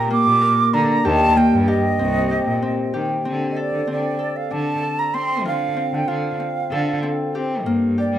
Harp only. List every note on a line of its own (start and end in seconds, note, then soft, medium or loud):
0.00 1.23 C4 medium
0.00 1.04 G4 medium
0.10 1.35 A#3 medium
0.41 2.54 A#4 medium
0.74 3.53 D4 medium
1.05 1.67 G4 medium
1.36 3.62 A#3 medium
1.68 2.31 G4 medium
1.99 2.62 C4 medium
2.31 2.93 G4 medium
2.62 3.25 C4 medium
2.94 5.29 G4 medium
3.25 3.87 C4 medium
3.56 4.18 A4 medium
3.87 5.14 C4 medium
4.19 4.82 A4 medium
4.51 7.30 D4 medium
4.83 6.71 A4 medium
5.14 5.76 C4 medium
5.45 6.07 F4 medium
5.76 6.39 C4 medium
6.08 8.19 F4 medium
6.40 7.03 C4 medium
6.72 7.72 A4 medium
7.03 8.19 C4 medium
7.35 7.97 G4 medium
7.66 8.19 A#3 medium
7.98 8.19 G4 medium